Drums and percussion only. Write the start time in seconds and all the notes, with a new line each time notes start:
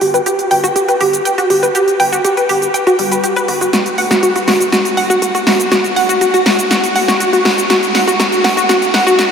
0.01 open hi-hat
0.14 closed hi-hat, shaker
0.26 closed hi-hat, shaker
0.39 closed hi-hat, shaker
0.51 open hi-hat
0.64 closed hi-hat, shaker
0.76 closed hi-hat, shaker
0.88 closed hi-hat, shaker
1.01 open hi-hat
1.13 closed hi-hat, shaker
1.25 closed hi-hat, shaker
1.38 closed hi-hat, shaker
1.50 open hi-hat
1.63 closed hi-hat, shaker
1.75 closed hi-hat, shaker
1.88 closed hi-hat, shaker
2.00 open hi-hat
2.12 closed hi-hat, shaker
2.24 closed hi-hat, shaker
2.37 closed hi-hat, shaker
2.49 open hi-hat
2.62 closed hi-hat, shaker
2.74 closed hi-hat, shaker
2.87 closed hi-hat, shaker
2.99 open hi-hat
3.12 closed hi-hat, shaker
3.24 closed hi-hat, shaker
3.36 closed hi-hat, shaker
3.48 open hi-hat
3.61 closed hi-hat, shaker
3.73 snare, closed hi-hat, shaker
3.86 closed hi-hat, shaker
3.98 open hi-hat
4.11 snare, closed hi-hat, shaker
4.23 closed hi-hat, shaker
4.36 closed hi-hat, shaker
4.48 snare, open hi-hat
4.60 closed hi-hat, shaker
4.72 snare, closed hi-hat, shaker
4.85 closed hi-hat, shaker
4.97 open hi-hat
5.10 closed hi-hat, shaker
5.22 closed hi-hat, shaker
5.35 closed hi-hat, shaker
5.47 snare, open hi-hat
5.60 closed hi-hat, shaker
5.72 snare, closed hi-hat, shaker
5.84 closed hi-hat, shaker
5.96 open hi-hat
6.09 closed hi-hat, shaker
6.21 closed hi-hat, shaker
6.34 closed hi-hat, shaker
6.46 snare, open hi-hat
6.59 closed hi-hat, shaker
6.71 snare, closed hi-hat, shaker
6.84 closed hi-hat, shaker
6.96 open hi-hat
7.08 snare, closed hi-hat, shaker
7.20 closed hi-hat, shaker
7.33 closed hi-hat, shaker
7.45 snare, open hi-hat
7.58 closed hi-hat, shaker
7.70 snare, closed hi-hat, shaker
7.83 closed hi-hat, shaker
7.95 snare, open hi-hat
8.08 closed hi-hat, shaker
8.20 snare, closed hi-hat, shaker
8.32 closed hi-hat, shaker
8.44 snare, open hi-hat
8.57 closed hi-hat, shaker
8.69 snare, closed hi-hat, shaker
8.82 closed hi-hat, shaker
8.94 snare, open hi-hat
9.07 closed hi-hat, shaker
9.19 snare, closed hi-hat, shaker